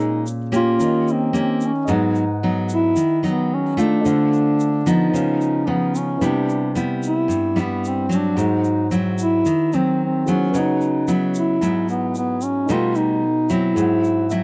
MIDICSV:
0, 0, Header, 1, 5, 480
1, 0, Start_track
1, 0, Tempo, 540054
1, 1680, Time_signature, 4, 2, 24, 8
1, 12830, End_track
2, 0, Start_track
2, 0, Title_t, "Grand piano"
2, 0, Program_c, 0, 0
2, 0, Control_c, 0, 64, 127
2, 0, Note_on_c, 0, 61, 48
2, 0, Note_on_c, 0, 68, 44
2, 0, Note_on_c, 0, 70, 42
2, 0, Note_on_c, 0, 88, 52
2, 676, Note_off_c, 0, 61, 0
2, 690, Note_on_c, 0, 61, 47
2, 697, Note_off_c, 0, 68, 0
2, 705, Note_on_c, 0, 67, 44
2, 706, Note_off_c, 0, 70, 0
2, 715, Note_off_c, 0, 88, 0
2, 723, Note_on_c, 0, 70, 42
2, 729, Control_c, 0, 64, 0
2, 737, Note_on_c, 0, 75, 52
2, 866, Control_c, 0, 64, 127
2, 1626, Note_off_c, 0, 75, 0
2, 1639, Note_on_c, 0, 75, 49
2, 1646, Note_off_c, 0, 61, 0
2, 1654, Note_off_c, 0, 67, 0
2, 1661, Note_on_c, 0, 68, 43
2, 1663, Note_off_c, 0, 70, 0
2, 1682, Note_on_c, 0, 71, 42
2, 1690, Control_c, 0, 64, 0
2, 1697, Note_on_c, 0, 78, 55
2, 1844, Control_c, 0, 64, 127
2, 3547, Note_off_c, 0, 75, 0
2, 3557, Note_off_c, 0, 68, 0
2, 3567, Note_on_c, 0, 62, 52
2, 3568, Note_off_c, 0, 71, 0
2, 3576, Note_off_c, 0, 78, 0
2, 3585, Note_on_c, 0, 69, 45
2, 3605, Note_on_c, 0, 72, 45
2, 3615, Control_c, 0, 64, 0
2, 3621, Note_on_c, 0, 77, 53
2, 3761, Control_c, 0, 64, 127
2, 4526, Note_off_c, 0, 62, 0
2, 4528, Note_on_c, 0, 63, 44
2, 4535, Note_off_c, 0, 69, 0
2, 4545, Note_off_c, 0, 72, 0
2, 4548, Note_on_c, 0, 71, 41
2, 4554, Note_off_c, 0, 77, 0
2, 4567, Note_on_c, 0, 73, 43
2, 4576, Control_c, 0, 64, 0
2, 4583, Note_on_c, 0, 77, 49
2, 4708, Control_c, 0, 64, 127
2, 5487, Note_off_c, 0, 63, 0
2, 5487, Note_off_c, 0, 71, 0
2, 5489, Note_on_c, 0, 64, 45
2, 5501, Note_on_c, 0, 71, 43
2, 5506, Note_off_c, 0, 73, 0
2, 5515, Note_off_c, 0, 77, 0
2, 5526, Note_on_c, 0, 60, 43
2, 5536, Control_c, 0, 64, 0
2, 5542, Note_on_c, 0, 79, 51
2, 5695, Control_c, 0, 64, 127
2, 7391, Note_off_c, 0, 64, 0
2, 7397, Note_off_c, 0, 71, 0
2, 7410, Note_off_c, 0, 60, 0
2, 7418, Note_off_c, 0, 79, 0
2, 7419, Note_on_c, 0, 66, 51
2, 7435, Note_on_c, 0, 68, 42
2, 7451, Note_on_c, 0, 72, 45
2, 7454, Control_c, 0, 64, 0
2, 7469, Note_on_c, 0, 78, 54
2, 7589, Control_c, 0, 64, 127
2, 9077, Note_off_c, 0, 66, 0
2, 9085, Note_off_c, 0, 68, 0
2, 9093, Note_off_c, 0, 72, 0
2, 9102, Note_off_c, 0, 78, 0
2, 9109, Note_on_c, 0, 64, 37
2, 9120, Note_on_c, 0, 68, 35
2, 9125, Note_on_c, 0, 72, 37
2, 9140, Note_on_c, 0, 78, 43
2, 9333, Note_on_c, 0, 66, 47
2, 9346, Note_on_c, 0, 71, 50
2, 9356, Note_off_c, 0, 64, 0
2, 9362, Note_off_c, 0, 68, 0
2, 9362, Note_on_c, 0, 73, 45
2, 9364, Note_off_c, 0, 72, 0
2, 9371, Note_off_c, 0, 78, 0
2, 9372, Control_c, 0, 64, 0
2, 9373, Note_on_c, 0, 75, 45
2, 9385, Note_on_c, 0, 78, 56
2, 9549, Control_c, 0, 64, 127
2, 11230, Note_off_c, 0, 66, 0
2, 11237, Note_off_c, 0, 71, 0
2, 11245, Note_off_c, 0, 73, 0
2, 11251, Note_off_c, 0, 75, 0
2, 11253, Note_on_c, 0, 63, 47
2, 11256, Note_off_c, 0, 78, 0
2, 11272, Note_on_c, 0, 69, 46
2, 11290, Control_c, 0, 64, 0
2, 11290, Note_on_c, 0, 71, 43
2, 11305, Note_on_c, 0, 79, 51
2, 11441, Control_c, 0, 64, 127
2, 12205, Note_on_c, 0, 64, 47
2, 12206, Note_off_c, 0, 63, 0
2, 12216, Note_off_c, 0, 69, 0
2, 12222, Note_on_c, 0, 68, 46
2, 12225, Note_off_c, 0, 71, 0
2, 12232, Note_off_c, 0, 79, 0
2, 12239, Note_on_c, 0, 72, 43
2, 12253, Control_c, 0, 64, 0
2, 12259, Note_on_c, 0, 78, 55
2, 12405, Control_c, 0, 64, 127
2, 12713, Note_on_c, 0, 76, 53
2, 12830, Note_off_c, 0, 64, 0
2, 12830, Note_off_c, 0, 68, 0
2, 12830, Note_off_c, 0, 72, 0
2, 12830, Note_off_c, 0, 76, 0
2, 12830, Note_off_c, 0, 78, 0
2, 12830, End_track
3, 0, Start_track
3, 0, Title_t, "Duduk"
3, 0, Program_c, 1, 69
3, 0, Note_on_c, 1, 63, 89
3, 211, Note_off_c, 1, 63, 0
3, 497, Note_on_c, 1, 65, 106
3, 995, Note_on_c, 1, 60, 88
3, 1008, Note_off_c, 1, 65, 0
3, 1217, Note_off_c, 1, 60, 0
3, 1240, Note_on_c, 1, 60, 83
3, 1484, Note_on_c, 1, 61, 80
3, 1497, Note_off_c, 1, 60, 0
3, 1729, Note_on_c, 1, 63, 85
3, 1742, Note_off_c, 1, 61, 0
3, 2185, Note_off_c, 1, 63, 0
3, 2434, Note_on_c, 1, 64, 113
3, 2866, Note_off_c, 1, 64, 0
3, 2912, Note_on_c, 1, 59, 86
3, 3152, Note_on_c, 1, 61, 86
3, 3165, Note_off_c, 1, 59, 0
3, 3383, Note_on_c, 1, 62, 103
3, 3396, Note_off_c, 1, 61, 0
3, 4350, Note_on_c, 1, 63, 97
3, 4363, Note_off_c, 1, 62, 0
3, 5070, Note_on_c, 1, 59, 77
3, 5083, Note_off_c, 1, 63, 0
3, 5316, Note_on_c, 1, 61, 81
3, 5329, Note_off_c, 1, 59, 0
3, 5549, Note_on_c, 1, 62, 76
3, 5563, Note_off_c, 1, 61, 0
3, 6017, Note_off_c, 1, 62, 0
3, 6265, Note_on_c, 1, 64, 101
3, 6763, Note_on_c, 1, 59, 85
3, 6776, Note_off_c, 1, 64, 0
3, 7000, Note_on_c, 1, 60, 81
3, 7013, Note_off_c, 1, 59, 0
3, 7248, Note_on_c, 1, 62, 85
3, 7261, Note_off_c, 1, 60, 0
3, 7468, Note_on_c, 1, 63, 88
3, 7482, Note_off_c, 1, 62, 0
3, 7936, Note_off_c, 1, 63, 0
3, 8178, Note_on_c, 1, 64, 109
3, 8665, Note_on_c, 1, 60, 91
3, 8679, Note_off_c, 1, 64, 0
3, 8894, Note_off_c, 1, 60, 0
3, 8933, Note_on_c, 1, 60, 80
3, 9165, Note_on_c, 1, 61, 83
3, 9178, Note_off_c, 1, 60, 0
3, 9408, Note_on_c, 1, 63, 88
3, 9422, Note_off_c, 1, 61, 0
3, 9865, Note_off_c, 1, 63, 0
3, 10102, Note_on_c, 1, 64, 96
3, 10539, Note_off_c, 1, 64, 0
3, 10580, Note_on_c, 1, 59, 79
3, 10794, Note_off_c, 1, 59, 0
3, 10825, Note_on_c, 1, 59, 88
3, 11061, Note_on_c, 1, 61, 89
3, 11075, Note_off_c, 1, 59, 0
3, 11305, Note_on_c, 1, 65, 106
3, 11318, Note_off_c, 1, 61, 0
3, 11530, Note_on_c, 1, 63, 94
3, 11544, Note_off_c, 1, 65, 0
3, 12000, Note_on_c, 1, 64, 99
3, 12014, Note_off_c, 1, 63, 0
3, 12830, Note_off_c, 1, 64, 0
3, 12830, End_track
4, 0, Start_track
4, 0, Title_t, "Nylon-string guitar"
4, 0, Program_c, 2, 24
4, 0, Note_on_c, 2, 46, 67
4, 0, Note_on_c, 2, 56, 55
4, 0, Note_on_c, 2, 61, 59
4, 230, Note_off_c, 2, 56, 0
4, 232, Note_off_c, 2, 61, 0
4, 461, Note_on_c, 2, 58, 66
4, 464, Note_on_c, 2, 61, 72
4, 469, Note_on_c, 2, 67, 71
4, 691, Note_off_c, 2, 46, 0
4, 711, Note_on_c, 2, 51, 68
4, 1152, Note_off_c, 2, 58, 0
4, 1153, Note_off_c, 2, 61, 0
4, 1156, Note_off_c, 2, 67, 0
4, 1184, Note_on_c, 2, 58, 60
4, 1190, Note_on_c, 2, 61, 59
4, 1193, Note_on_c, 2, 67, 68
4, 1514, Note_off_c, 2, 58, 0
4, 1518, Note_off_c, 2, 61, 0
4, 1519, Note_off_c, 2, 67, 0
4, 1652, Note_off_c, 2, 51, 0
4, 1668, Note_on_c, 2, 44, 76
4, 1675, Note_on_c, 2, 54, 55
4, 1676, Note_on_c, 2, 59, 56
4, 1677, Note_on_c, 2, 63, 62
4, 1986, Note_off_c, 2, 54, 0
4, 1987, Note_off_c, 2, 59, 0
4, 1987, Note_off_c, 2, 63, 0
4, 2162, Note_on_c, 2, 54, 54
4, 2167, Note_on_c, 2, 59, 54
4, 2168, Note_on_c, 2, 63, 57
4, 2612, Note_off_c, 2, 44, 0
4, 2632, Note_on_c, 2, 51, 69
4, 2639, Note_off_c, 2, 54, 0
4, 2641, Note_off_c, 2, 63, 0
4, 2642, Note_off_c, 2, 59, 0
4, 2870, Note_on_c, 2, 54, 57
4, 2876, Note_on_c, 2, 59, 60
4, 2878, Note_on_c, 2, 63, 65
4, 3318, Note_off_c, 2, 54, 0
4, 3319, Note_off_c, 2, 59, 0
4, 3322, Note_off_c, 2, 63, 0
4, 3352, Note_on_c, 2, 57, 70
4, 3356, Note_on_c, 2, 60, 59
4, 3359, Note_on_c, 2, 65, 66
4, 3574, Note_off_c, 2, 51, 0
4, 3603, Note_on_c, 2, 50, 75
4, 4280, Note_off_c, 2, 57, 0
4, 4281, Note_off_c, 2, 60, 0
4, 4283, Note_off_c, 2, 65, 0
4, 4320, Note_on_c, 2, 53, 63
4, 4326, Note_on_c, 2, 59, 69
4, 4327, Note_on_c, 2, 63, 68
4, 4540, Note_off_c, 2, 50, 0
4, 4564, Note_on_c, 2, 49, 67
4, 5004, Note_off_c, 2, 53, 0
4, 5007, Note_off_c, 2, 59, 0
4, 5007, Note_off_c, 2, 63, 0
4, 5039, Note_on_c, 2, 53, 52
4, 5043, Note_on_c, 2, 59, 59
4, 5044, Note_on_c, 2, 63, 61
4, 5500, Note_off_c, 2, 49, 0
4, 5503, Note_off_c, 2, 53, 0
4, 5504, Note_off_c, 2, 59, 0
4, 5505, Note_off_c, 2, 63, 0
4, 5522, Note_on_c, 2, 55, 51
4, 5523, Note_on_c, 2, 48, 65
4, 5524, Note_on_c, 2, 59, 60
4, 5528, Note_on_c, 2, 64, 64
4, 5964, Note_off_c, 2, 55, 0
4, 5966, Note_off_c, 2, 59, 0
4, 5968, Note_off_c, 2, 64, 0
4, 6002, Note_on_c, 2, 55, 56
4, 6005, Note_on_c, 2, 59, 59
4, 6012, Note_on_c, 2, 64, 66
4, 6460, Note_off_c, 2, 48, 0
4, 6472, Note_on_c, 2, 43, 70
4, 6684, Note_off_c, 2, 55, 0
4, 6687, Note_off_c, 2, 59, 0
4, 6688, Note_off_c, 2, 64, 0
4, 6718, Note_on_c, 2, 55, 60
4, 6722, Note_on_c, 2, 59, 58
4, 6727, Note_on_c, 2, 64, 64
4, 7163, Note_off_c, 2, 55, 0
4, 7164, Note_off_c, 2, 59, 0
4, 7165, Note_off_c, 2, 64, 0
4, 7192, Note_on_c, 2, 54, 60
4, 7196, Note_on_c, 2, 60, 61
4, 7414, Note_off_c, 2, 43, 0
4, 7435, Note_on_c, 2, 44, 74
4, 7880, Note_off_c, 2, 54, 0
4, 7881, Note_off_c, 2, 60, 0
4, 7921, Note_on_c, 2, 54, 58
4, 7921, Note_on_c, 2, 60, 56
4, 7930, Note_on_c, 2, 64, 61
4, 8375, Note_off_c, 2, 44, 0
4, 8399, Note_off_c, 2, 60, 0
4, 8400, Note_off_c, 2, 54, 0
4, 8404, Note_off_c, 2, 64, 0
4, 8407, Note_on_c, 2, 51, 70
4, 8651, Note_on_c, 2, 54, 54
4, 8654, Note_on_c, 2, 60, 58
4, 9089, Note_off_c, 2, 54, 0
4, 9090, Note_off_c, 2, 60, 0
4, 9135, Note_on_c, 2, 54, 61
4, 9141, Note_on_c, 2, 59, 69
4, 9340, Note_off_c, 2, 51, 0
4, 9368, Note_on_c, 2, 49, 72
4, 9810, Note_off_c, 2, 54, 0
4, 9812, Note_off_c, 2, 59, 0
4, 9846, Note_on_c, 2, 54, 59
4, 9850, Note_on_c, 2, 59, 54
4, 9855, Note_on_c, 2, 64, 55
4, 10286, Note_off_c, 2, 54, 0
4, 10287, Note_off_c, 2, 59, 0
4, 10290, Note_off_c, 2, 64, 0
4, 10300, Note_off_c, 2, 49, 0
4, 10321, Note_on_c, 2, 44, 68
4, 10324, Note_on_c, 2, 54, 57
4, 10328, Note_on_c, 2, 59, 55
4, 10336, Note_on_c, 2, 64, 57
4, 11243, Note_off_c, 2, 54, 0
4, 11244, Note_off_c, 2, 59, 0
4, 11249, Note_off_c, 2, 64, 0
4, 11257, Note_off_c, 2, 44, 0
4, 11278, Note_on_c, 2, 47, 69
4, 11286, Note_on_c, 2, 55, 56
4, 11288, Note_on_c, 2, 57, 62
4, 11293, Note_on_c, 2, 63, 61
4, 11758, Note_off_c, 2, 57, 0
4, 11759, Note_off_c, 2, 55, 0
4, 11763, Note_off_c, 2, 63, 0
4, 11996, Note_on_c, 2, 54, 61
4, 12002, Note_on_c, 2, 60, 71
4, 12004, Note_on_c, 2, 64, 71
4, 12216, Note_off_c, 2, 47, 0
4, 12230, Note_on_c, 2, 44, 66
4, 12679, Note_off_c, 2, 54, 0
4, 12681, Note_off_c, 2, 60, 0
4, 12683, Note_off_c, 2, 64, 0
4, 12721, Note_on_c, 2, 54, 59
4, 12724, Note_on_c, 2, 60, 58
4, 12728, Note_on_c, 2, 64, 65
4, 12830, Note_off_c, 2, 44, 0
4, 12830, Note_off_c, 2, 54, 0
4, 12830, Note_off_c, 2, 60, 0
4, 12830, Note_off_c, 2, 64, 0
4, 12830, End_track
5, 0, Start_track
5, 0, Title_t, "Drums"
5, 237, Note_on_c, 9, 82, 59
5, 326, Note_off_c, 9, 82, 0
5, 474, Note_on_c, 9, 82, 66
5, 563, Note_off_c, 9, 82, 0
5, 712, Note_on_c, 9, 82, 65
5, 800, Note_off_c, 9, 82, 0
5, 958, Note_on_c, 9, 82, 28
5, 1047, Note_off_c, 9, 82, 0
5, 1194, Note_on_c, 9, 82, 58
5, 1283, Note_off_c, 9, 82, 0
5, 1430, Note_on_c, 9, 82, 59
5, 1519, Note_off_c, 9, 82, 0
5, 1668, Note_on_c, 9, 82, 60
5, 1757, Note_off_c, 9, 82, 0
5, 1913, Note_on_c, 9, 82, 24
5, 2002, Note_off_c, 9, 82, 0
5, 2393, Note_on_c, 9, 82, 68
5, 2482, Note_off_c, 9, 82, 0
5, 2633, Note_on_c, 9, 82, 64
5, 2722, Note_off_c, 9, 82, 0
5, 2882, Note_on_c, 9, 82, 28
5, 2971, Note_off_c, 9, 82, 0
5, 3363, Note_on_c, 9, 82, 61
5, 3452, Note_off_c, 9, 82, 0
5, 3604, Note_on_c, 9, 82, 65
5, 3693, Note_off_c, 9, 82, 0
5, 3848, Note_on_c, 9, 82, 24
5, 3937, Note_off_c, 9, 82, 0
5, 4087, Note_on_c, 9, 82, 53
5, 4176, Note_off_c, 9, 82, 0
5, 4328, Note_on_c, 9, 82, 70
5, 4417, Note_off_c, 9, 82, 0
5, 4577, Note_on_c, 9, 82, 67
5, 4666, Note_off_c, 9, 82, 0
5, 4809, Note_on_c, 9, 82, 27
5, 4898, Note_off_c, 9, 82, 0
5, 5289, Note_on_c, 9, 82, 61
5, 5378, Note_off_c, 9, 82, 0
5, 5527, Note_on_c, 9, 82, 60
5, 5616, Note_off_c, 9, 82, 0
5, 5771, Note_on_c, 9, 82, 27
5, 5860, Note_off_c, 9, 82, 0
5, 6007, Note_on_c, 9, 82, 53
5, 6096, Note_off_c, 9, 82, 0
5, 6248, Note_on_c, 9, 82, 68
5, 6337, Note_off_c, 9, 82, 0
5, 6487, Note_on_c, 9, 82, 65
5, 6576, Note_off_c, 9, 82, 0
5, 6729, Note_on_c, 9, 82, 27
5, 6818, Note_off_c, 9, 82, 0
5, 6974, Note_on_c, 9, 82, 51
5, 7062, Note_off_c, 9, 82, 0
5, 7212, Note_on_c, 9, 82, 60
5, 7301, Note_off_c, 9, 82, 0
5, 7446, Note_on_c, 9, 82, 62
5, 7535, Note_off_c, 9, 82, 0
5, 7682, Note_on_c, 9, 82, 26
5, 7770, Note_off_c, 9, 82, 0
5, 7924, Note_on_c, 9, 82, 53
5, 8013, Note_off_c, 9, 82, 0
5, 8163, Note_on_c, 9, 82, 73
5, 8252, Note_off_c, 9, 82, 0
5, 8405, Note_on_c, 9, 82, 62
5, 8494, Note_off_c, 9, 82, 0
5, 8645, Note_on_c, 9, 82, 26
5, 8734, Note_off_c, 9, 82, 0
5, 9130, Note_on_c, 9, 82, 62
5, 9219, Note_off_c, 9, 82, 0
5, 9371, Note_on_c, 9, 82, 65
5, 9459, Note_off_c, 9, 82, 0
5, 9610, Note_on_c, 9, 82, 26
5, 9699, Note_off_c, 9, 82, 0
5, 9847, Note_on_c, 9, 82, 59
5, 9936, Note_off_c, 9, 82, 0
5, 10085, Note_on_c, 9, 82, 66
5, 10174, Note_off_c, 9, 82, 0
5, 10331, Note_on_c, 9, 82, 65
5, 10420, Note_off_c, 9, 82, 0
5, 10562, Note_on_c, 9, 82, 28
5, 10651, Note_off_c, 9, 82, 0
5, 10799, Note_on_c, 9, 82, 57
5, 10887, Note_off_c, 9, 82, 0
5, 11032, Note_on_c, 9, 82, 62
5, 11121, Note_off_c, 9, 82, 0
5, 11276, Note_on_c, 9, 82, 61
5, 11365, Note_off_c, 9, 82, 0
5, 11510, Note_on_c, 9, 82, 27
5, 11599, Note_off_c, 9, 82, 0
5, 11995, Note_on_c, 9, 82, 68
5, 12084, Note_off_c, 9, 82, 0
5, 12238, Note_on_c, 9, 82, 65
5, 12327, Note_off_c, 9, 82, 0
5, 12479, Note_on_c, 9, 82, 27
5, 12567, Note_off_c, 9, 82, 0
5, 12713, Note_on_c, 9, 82, 56
5, 12802, Note_off_c, 9, 82, 0
5, 12830, End_track
0, 0, End_of_file